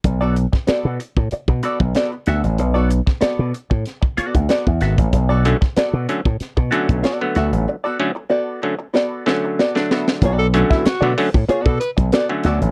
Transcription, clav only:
X:1
M:4/4
L:1/16
Q:1/4=94
K:Bm
V:1 name="Clav"
z16 | z16 | z2 [D,F,A,C] [A,C] z2 [D,F,A,C] [A,C] z2 [D,F,A,C]2 z [D,F,A,B,]3 | z2 [D,F,A,C] [A,C] z2 [D,F,A,C] [A,C] z2 [D,F,A,C]2 z [D,F,A,D]3 |
z2 [D,F,A,C]2 z [D,F,A,B,] [D,F,A,C] z6 [D,F,A,C]3 |]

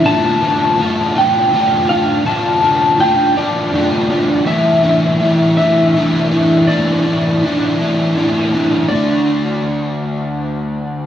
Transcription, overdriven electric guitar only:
X:1
M:6/8
L:1/8
Q:3/8=54
K:Dm
V:1 name="Overdriven electric guitar"
[D,A,DF] [A,DF] [D,A,DF] [A,DF] [D,A,DF] [A,DF] | [D,A,DF] [A,DF] [D,A,DF] [A,DF] [D,A,DF] [A,DF] | [E,A,DE] [A,DE] [E,A,DE] [A,DE] [E,A,DE] [A,DE] | [E,A,DE] [A,DE] [E,A,DE] [A,DE] [E,A,DE] [A,DE] |
[D,A,D]6 |]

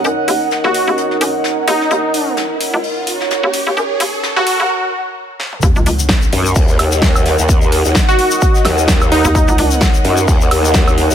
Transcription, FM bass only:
X:1
M:4/4
L:1/16
Q:"Swing 16ths" 1/4=129
K:Ebm
V:1 name="FM bass" clef=bass
G,,2 E,,3 E,,2 E,,3 G,,4 E,,2 | E,,3 z4 D,,2 z4 E,,2 E,, | G,,2 E,,3 E,,2 E,, z8 | E,, D,, D,,4 z8 z2 |
z12 z3 E,, | E,, D,, D,,4 z8 z2 |]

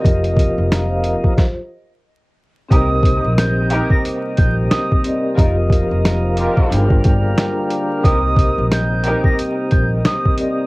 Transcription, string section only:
X:1
M:4/4
L:1/16
Q:"Swing 16ths" 1/4=90
K:Cm
V:1 name="String section"
z16 | [EGB] z4 z [EGB]2 z8 | [EFB] z4 z [FGB]3 z6 z | [EGB] z4 z [EGB]2 z8 |]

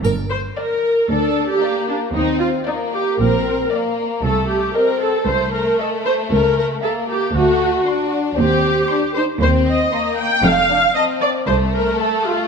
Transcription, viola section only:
X:1
M:4/4
L:1/16
Q:1/4=115
K:Gm
V:1 name="Viola section"
B2 c2 B4 A3 G3 D2 | E2 F2 E2 G2 B4 z4 | A2 G2 B2 A2 c2 B2 A2 c2 | B2 B2 A2 G2 ^F6 z2 |
[K:Cdor] G6 c2 c2 e4 g2 | f4 e2 d2 c2 B2 A2 F2 |]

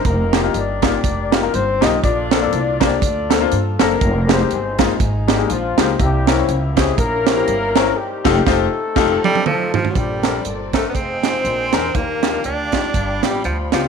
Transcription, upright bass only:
X:1
M:4/4
L:1/8
Q:"Swing" 1/4=121
K:Bb
V:1 name="Upright bass" clef=bass
F,,,2 G,,,2 F,,,2 G,,, _C,, | B,,,2 C,,2 D,,2 G,, _G,,, | F,,,2 G,,,2 _A,,,2 B,,, _D,, | C,,2 _D,,2 B,,,2 G,,,2 |
z F,,, F,,, z F,,, z3 | B,,,2 G,,,2 F,,,2 B,,, =E,, | E,,2 D,,2 G,,, A,,, D,, _D,, |]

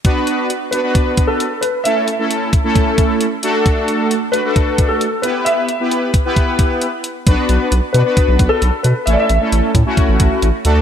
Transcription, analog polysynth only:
X:1
M:4/4
L:1/16
Q:1/4=133
K:Bm
V:1 name="Analog polysynth"
[B,DFB]4 z2 [B,DFB] [B,DFB]4- [B,DFB] z4 | [A,CEA]2 z [A,CEA]3 z [A,CEA]4- [A,CEA] z2 [A,DFA]2- | [A,DFA]4 z2 [A,DFB] [A,DFA]4- [A,DFA] z2 [B,EGB]2- | [B,EGB]2 z [B,EGB]3 z [B,EGB]4- [B,EGB] z4 |
[B,DFB]4 z2 [B,DFB] [B,DFB]4- [B,DFB] z4 | [A,CEA]2 z [A,CEA]3 z [A,CEF]4- [A,CEF] z2 [A,DFA]2 |]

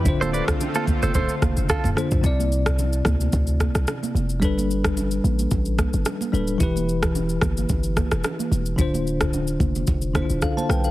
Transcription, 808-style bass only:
X:1
M:4/4
L:1/16
Q:"Swing 16ths" 1/4=110
K:Ddor
V:1 name="808-style bass" clef=bass
D,,,3 z4 F,,, D,,, z F,,, F,,, z D,,, z B,,, | C,,6 D,,2 D,,3 C,, z2 F,,,2 | G,,,6 A,,,2 A,,,3 G,,, z2 D,,,2 | E,,,6 G,,,2 G,,,3 E,,, z2 E,,,2 |
D,,,6 F,,,2 F,,,3 D,,, z2 B,,,2 |]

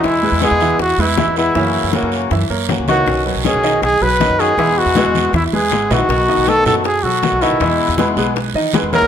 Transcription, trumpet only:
X:1
M:4/4
L:1/8
Q:1/4=158
K:E
V:1 name="Trumpet"
E2 G2 F E2 E- | E3 z4 F- | F z G2 G B2 G- | G F3 E G2 F- |
F2 A A G F2 E- | E3 z4 ^A |]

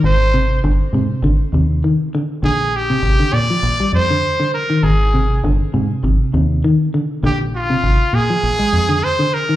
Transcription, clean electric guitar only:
X:1
M:4/4
L:1/16
Q:1/4=100
K:Bbmix
V:1 name="Clean electric guitar" clef=bass
E, z C,2 D,2 C,2 D,2 C,2 E,2 D,2 | D,2 z C,2 D,2 F,2 G,2 D,2 D,2 E,- | E, z C,2 D,2 C,2 C,2 C,2 E,2 D,2 | D,2 z C,2 z2 F,2 A,2 D,2 D,2 E, |]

